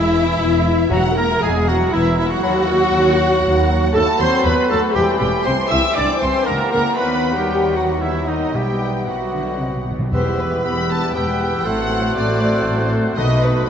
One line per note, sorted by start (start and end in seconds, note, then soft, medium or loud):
0.00 0.34 E1 medium
0.00 0.10 E2 medium
0.00 0.34 E2 medium
0.00 0.88 E3 medium
0.00 0.87 E4 medium
0.00 0.88 E4 loud
0.00 0.91 E4 medium
0.00 0.92 E5 medium
0.40 0.86 E1 medium
0.40 0.85 E2 medium
0.90 1.36 E1 medium
0.90 1.63 E2 medium
0.90 1.36 E2 medium
0.90 1.08 F#3 medium
0.90 1.17 F#3 medium
0.90 1.16 F#4 medium
0.90 1.03 F#4 medium
0.90 1.17 F#5 medium
0.90 1.15 A#5 medium
1.17 1.29 A#3 medium
1.17 1.42 A#4 loud
1.17 1.42 A#4 medium
1.17 1.42 A#5 medium
1.17 1.43 A#5 medium
1.40 1.87 E1 medium
1.40 1.87 E2 medium
1.40 1.67 G#3 medium
1.40 1.67 G#4 medium
1.40 1.70 G#4 medium
1.40 1.68 G#5 medium
1.40 1.52 G#5 medium
1.67 1.93 F#3 medium
1.67 1.94 F#4 medium
1.67 1.93 F#4 medium
1.67 1.92 F#4 medium
1.67 1.75 F#5 medium
1.67 1.93 F#5 medium
1.92 2.38 E1 medium
1.92 2.38 E2 medium
1.92 2.18 E3 medium
1.92 2.17 E4 loud
1.92 2.18 E4 loud
1.92 2.04 E4 medium
1.92 2.17 E5 medium
1.92 2.19 E5 medium
2.18 2.25 E3 medium
2.18 2.24 E4 medium
2.18 2.31 E4 loud
2.18 2.25 E4 medium
2.18 2.31 E5 medium
2.18 2.26 E5 medium
2.30 3.93 F#3 loud
2.30 3.92 F#4 medium
2.30 3.95 F#4 loud
2.30 3.97 F#4 medium
2.30 3.92 F#5 medium
2.30 3.93 F#5 loud
2.42 2.88 D#2 medium
2.42 2.61 F#3 medium
2.42 2.67 B5 medium
2.94 3.39 D#2 medium
3.45 3.90 D#2 medium
3.94 4.03 D#2 medium
3.94 4.98 F#3 medium
3.94 4.20 A3 medium
3.94 4.02 A4 loud
3.94 4.21 A4 loud
3.94 4.07 A4 loud
3.94 4.19 A5 loud
3.94 4.21 A5 loud
3.94 5.43 B5 medium
4.19 4.28 D#2 medium
4.19 4.45 C4 loud
4.19 4.45 C5 loud
4.19 4.48 C5 loud
4.19 4.33 C5 medium
4.19 4.45 C6 loud
4.19 4.29 C6 medium
4.43 4.53 D#2 medium
4.43 4.54 D#2 medium
4.43 4.71 B3 medium
4.43 4.70 B4 medium
4.43 4.71 B4 medium
4.43 4.70 B4 medium
4.43 4.70 B5 medium
4.43 4.71 B5 medium
4.70 4.78 D#2 medium
4.70 4.79 D#2 medium
4.70 4.96 A3 medium
4.70 4.95 A4 loud
4.70 4.82 A4 medium
4.70 4.83 A4 medium
4.70 4.78 A5 loud
4.70 4.96 A5 medium
4.94 5.03 E1 medium
4.94 5.04 E2 medium
4.94 6.99 E3 medium
4.94 5.19 G3 medium
4.94 5.18 G4 loud
4.94 5.07 G4 loud
4.94 5.08 G4 medium
4.94 5.03 G5 medium
4.94 5.22 G5 medium
5.18 5.29 E1 medium
5.18 5.30 E2 medium
5.18 5.46 G3 medium
5.18 5.28 G4 loud
5.18 5.46 G4 medium
5.18 5.49 G4 medium
5.18 5.45 G5 medium
5.23 5.31 G5 medium
5.44 5.55 C2 medium
5.44 5.55 C3 medium
5.44 5.58 C4 medium
5.44 5.53 C5 medium
5.44 5.58 C5 medium
5.44 5.72 C5 medium
5.44 6.48 G5 medium
5.44 5.71 C6 medium
5.44 5.72 C6 medium
5.70 5.81 C2 medium
5.70 5.80 C3 medium
5.70 5.83 E4 loud
5.70 5.96 E5 loud
5.70 5.83 E5 loud
5.70 5.96 E6 medium
5.70 5.98 E6 medium
5.74 5.85 E5 medium
5.94 6.06 C2 medium
5.94 6.05 C3 medium
5.94 6.08 D4 medium
5.94 6.21 D5 loud
5.94 6.07 D5 medium
5.94 6.09 D5 medium
5.94 6.21 D6 medium
5.94 6.23 D6 medium
6.20 6.31 C2 medium
6.20 6.30 C3 medium
6.20 6.47 C4 medium
6.20 6.46 C5 medium
6.20 6.48 C5 medium
6.20 6.47 C6 medium
6.24 6.35 C5 medium
6.24 6.49 C6 medium
6.46 6.56 C#2 medium
6.46 6.56 C#3 medium
6.46 6.70 A#3 medium
6.46 6.71 A#4 loud
6.46 6.70 A#4 medium
6.46 6.60 A#4 medium
6.46 8.53 F#5 medium
6.46 6.71 A#5 medium
6.46 6.72 A#5 medium
6.71 6.82 C#2 medium
6.71 6.82 C#3 medium
6.71 6.97 A#3 medium
6.71 6.97 A#4 loud
6.71 6.84 A#4 medium
6.71 6.85 A#4 medium
6.71 6.98 A#5 medium
6.98 8.50 D#2 medium
6.98 8.51 D#3 medium
6.98 8.51 F#3 medium
6.98 7.37 B3 medium
6.98 7.36 B4 medium
6.98 7.36 B5 medium
6.98 7.38 B5 medium
7.36 7.75 G3 medium
7.36 7.74 G4 medium
7.36 7.77 G4 medium
7.36 7.75 G4 medium
7.36 7.75 G5 medium
7.36 7.76 G5 medium
7.75 7.87 F#3 soft
7.75 8.02 F#4 medium
7.75 8.03 F#4 medium
7.75 8.04 F#4 medium
7.75 8.02 F#5 medium
7.75 8.02 F#5 soft
8.01 8.13 E3 medium
8.01 8.28 E4 medium
8.01 8.30 E4 medium
8.01 8.28 E4 medium
8.01 8.27 E5 medium
8.01 8.28 E5 medium
8.27 8.53 D#3 medium
8.27 8.54 D#4 medium
8.27 8.57 D#4 medium
8.27 8.54 D#5 medium
8.27 8.55 D#5 medium
8.53 9.90 B1 soft
8.53 9.01 B2 soft
8.53 9.30 B2 medium
8.53 9.06 G3 medium
8.53 9.85 B3 medium
8.53 9.07 G4 medium
8.53 8.89 G4 medium
8.53 9.58 E5 soft
8.53 9.08 G5 medium
9.06 9.15 B2 soft
9.06 9.86 F#3 soft
9.06 9.83 F#4 soft
9.06 9.87 F#4 medium
9.06 9.83 F#4 soft
9.06 9.87 F#5 soft
9.06 9.86 F#5 soft
9.34 9.60 D3 medium
9.60 9.68 B2 soft
9.60 9.86 C3 soft
9.60 9.67 D#5 soft
9.69 9.75 B2 soft
9.77 9.83 B2 soft
9.85 9.90 B2 soft
9.85 10.12 B2 medium
9.91 9.98 B2 medium
9.99 10.06 B2 medium
10.11 10.58 E1 medium
10.11 10.85 E2 medium
10.11 10.58 E2 medium
10.11 10.25 E3 soft
10.11 11.61 B3 medium
10.11 10.24 B3 soft
10.11 10.60 B3 medium
10.11 11.61 E4 medium
10.11 10.60 G4 medium
10.11 10.25 G4 medium
10.11 10.61 B4 medium
10.11 10.25 B4 medium
10.11 10.37 C5 medium
10.11 10.61 E6 medium
10.25 10.38 G3 medium
10.25 10.39 E4 soft
10.25 10.38 G4 soft
10.38 10.52 E3 medium
10.38 10.52 B3 soft
10.38 10.50 G4 soft
10.38 10.51 B4 medium
10.38 10.65 B4 medium
10.51 10.65 G3 medium
10.51 10.64 E4 soft
10.51 10.63 G4 soft
10.64 11.09 E1 medium
10.64 11.09 E2 medium
10.64 10.77 E3 medium
10.64 11.14 B3 medium
10.64 10.77 B3 medium
10.64 11.13 G4 medium
10.64 10.74 G4 medium
10.64 11.14 B4 medium
10.64 10.76 B4 medium
10.64 10.90 B5 medium
10.64 11.14 E6 medium
10.75 10.90 G3 medium
10.75 10.89 E4 soft
10.75 10.87 G4 soft
10.88 11.03 E3 medium
10.88 11.02 B3 medium
10.88 11.00 G4 soft
10.88 11.02 B4 soft
10.88 11.15 A5 medium
11.02 11.16 G3 medium
11.02 11.15 E4 medium
11.02 11.15 G4 soft
11.14 11.60 E1 medium
11.14 11.60 E2 medium
11.14 11.27 E3 medium
11.14 11.68 B3 medium
11.14 11.27 B3 medium
11.14 11.66 G4 medium
11.14 11.27 G4 medium
11.14 11.68 B4 medium
11.14 11.27 B4 soft
11.14 11.65 G5 medium
11.14 11.68 E6 medium
11.28 11.41 G3 medium
11.28 11.41 E4 soft
11.28 11.40 G4 medium
11.41 11.54 E3 medium
11.41 11.54 B3 medium
11.41 11.53 G4 medium
11.41 11.54 B4 medium
11.53 11.66 G3 medium
11.53 11.66 E4 medium
11.53 11.66 G4 soft
11.65 12.10 A1 medium
11.65 12.11 A2 medium
11.65 11.78 F#3 medium
11.65 13.17 A3 medium
11.65 11.78 C4 medium
11.65 13.15 C4 medium
11.65 13.15 F#4 medium
11.65 13.16 A4 medium
11.65 11.77 A4 medium
11.65 13.19 C5 medium
11.65 12.16 F#5 medium
11.65 13.19 F#6 medium
11.78 11.91 A3 medium
11.78 11.92 F#4 soft
11.78 11.92 C5 medium
11.91 12.04 F#3 medium
11.91 12.04 C4 medium
11.91 12.04 A4 soft
12.04 12.17 A3 medium
12.04 12.17 F#4 medium
12.04 12.16 C5 medium
12.16 12.61 A1 medium
12.16 12.61 A2 medium
12.16 12.29 F#3 medium
12.16 12.28 C4 medium
12.16 12.28 A4 medium
12.16 12.91 D5 medium
12.29 12.42 A3 medium
12.29 12.42 F#4 medium
12.29 12.42 C5 soft
12.42 12.55 F#3 medium
12.42 12.55 C4 medium
12.42 12.54 A4 medium
12.55 12.68 A3 medium
12.55 12.67 F#4 medium
12.55 12.68 C5 medium
12.67 13.12 A1 medium
12.67 13.12 A2 medium
12.67 12.80 F#3 medium
12.67 12.80 C4 medium
12.67 12.79 A4 medium
12.79 12.94 A3 soft
12.79 12.92 F#4 medium
12.79 12.92 C5 medium
12.91 13.06 F#3 medium
12.91 13.06 C4 medium
12.91 13.05 A4 medium
13.04 13.18 A3 medium
13.04 13.16 F#4 medium
13.04 13.17 C5 medium
13.16 13.62 B1 medium
13.16 13.63 B2 medium
13.16 13.70 B2 medium
13.16 13.30 D#3 medium
13.16 13.67 A3 medium
13.16 13.70 A3 medium
13.16 13.30 B3 medium
13.16 13.70 D#4 medium
13.16 13.67 F#4 medium
13.16 13.29 F#4 medium
13.16 13.29 A4 medium
13.16 13.67 B4 medium
13.16 13.40 D#5 medium
13.16 13.67 D#6 medium
13.29 13.43 F#3 medium
13.29 13.43 A3 medium
13.29 13.42 D#4 medium
13.29 13.43 B4 medium
13.41 13.56 D#3 medium
13.41 13.56 B3 medium
13.41 13.55 F#4 medium
13.41 13.55 A4 medium
13.41 13.69 B4 medium
13.54 13.69 F#3 medium
13.54 13.69 A3 medium
13.54 13.67 D#4 medium
13.54 13.67 B4 medium
13.66 13.70 A4 medium